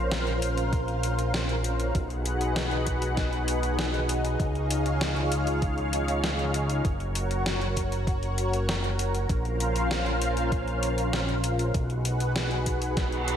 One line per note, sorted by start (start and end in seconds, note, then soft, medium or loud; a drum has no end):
0.00 1.92 A#1 medium
0.00 1.91 C#4 medium
0.00 1.92 F4 medium
0.00 1.92 A#4 medium
0.00 1.92 C5 medium
0.00 1.92 F5 medium
0.11 snare loud
0.11 closed hi-hat medium
0.27 closed hi-hat soft
0.42 closed hi-hat medium
0.57 closed hi-hat medium
0.73 kick loud
0.73 closed hi-hat medium
0.88 closed hi-hat soft
1.03 closed hi-hat medium
1.19 closed hi-hat medium
1.34 snare loud
1.34 closed hi-hat soft
1.49 closed hi-hat soft
1.64 closed hi-hat medium
1.80 closed hi-hat medium
1.95 4.37 B1 medium
1.95 6.81 D#4 medium
1.95 4.38 F#4 medium
1.95 6.81 G#4 medium
1.95 4.38 B4 medium
1.95 4.38 F#5 medium
1.95 kick loud
1.95 closed hi-hat medium
2.10 closed hi-hat soft
2.25 closed hi-hat medium
2.41 closed hi-hat soft
2.56 snare loud
2.56 closed hi-hat medium
2.71 closed hi-hat soft
2.87 kick medium
2.87 closed hi-hat medium
3.02 closed hi-hat soft
3.17 kick loud
3.17 snare medium
3.17 closed hi-hat medium
3.33 closed hi-hat soft
3.48 closed hi-hat medium
3.63 closed hi-hat soft
3.79 snare loud
3.79 closed hi-hat soft
3.94 closed hi-hat soft
4.09 closed hi-hat medium
4.25 closed hi-hat medium
4.40 6.82 C#2 medium
4.40 6.82 F4 medium
4.40 6.82 C#5 medium
4.40 6.82 F5 medium
4.40 kick loud
4.40 closed hi-hat soft
4.55 closed hi-hat soft
4.71 closed hi-hat medium
4.86 closed hi-hat soft
5.01 snare loud
5.01 closed hi-hat soft
5.16 closed hi-hat soft
5.32 closed hi-hat medium
5.47 closed hi-hat soft
5.62 kick loud
5.62 closed hi-hat medium
5.78 closed hi-hat soft
5.93 closed hi-hat medium
6.08 closed hi-hat medium
6.24 snare loud
6.24 closed hi-hat soft
6.39 closed hi-hat soft
6.54 closed hi-hat medium
6.70 closed hi-hat medium
6.85 9.27 F#1 medium
6.85 9.27 F#4 medium
6.85 11.70 A#4 medium
6.85 9.27 C#5 medium
6.85 kick loud
6.85 closed hi-hat soft
7.00 closed hi-hat soft
7.15 closed hi-hat medium
7.31 closed hi-hat soft
7.46 snare loud
7.46 closed hi-hat soft
7.61 closed hi-hat soft
7.77 kick medium
7.77 closed hi-hat medium
7.92 closed hi-hat soft
8.07 kick loud
8.07 closed hi-hat soft
8.23 closed hi-hat soft
8.38 closed hi-hat medium
8.53 closed hi-hat soft
8.69 snare loud
8.69 closed hi-hat soft
8.84 closed hi-hat soft
8.99 closed hi-hat medium
9.15 closed hi-hat soft
9.29 11.71 A#1 medium
9.29 11.72 C#4 medium
9.29 11.72 F4 medium
9.29 11.72 C5 medium
9.29 11.72 F5 medium
9.29 kick loud
9.29 closed hi-hat medium
9.45 closed hi-hat soft
9.60 closed hi-hat medium
9.76 closed hi-hat medium
9.91 snare loud
9.91 closed hi-hat soft
10.06 closed hi-hat soft
10.22 closed hi-hat medium
10.37 closed hi-hat soft
10.52 kick loud
10.52 closed hi-hat medium
10.68 closed hi-hat soft
10.83 closed hi-hat medium
10.98 closed hi-hat soft
11.13 snare loud
11.13 closed hi-hat soft
11.29 closed hi-hat soft
11.44 closed hi-hat medium
11.59 closed hi-hat medium
11.74 13.37 B1 medium
11.74 13.37 D#4 medium
11.74 13.37 F#4 medium
11.74 13.37 G#4 medium
11.74 13.37 B4 medium
11.74 13.37 F#5 medium
11.74 kick loud
11.74 closed hi-hat medium
11.90 closed hi-hat soft
12.05 closed hi-hat medium
12.20 closed hi-hat medium
12.36 snare loud
12.36 closed hi-hat medium
12.51 closed hi-hat soft
12.66 kick medium
12.66 closed hi-hat medium
12.82 closed hi-hat soft
12.97 kick loud
12.97 snare medium
12.97 closed hi-hat medium
12.97 reverse cymbal medium
13.12 closed hi-hat soft
13.28 closed hi-hat medium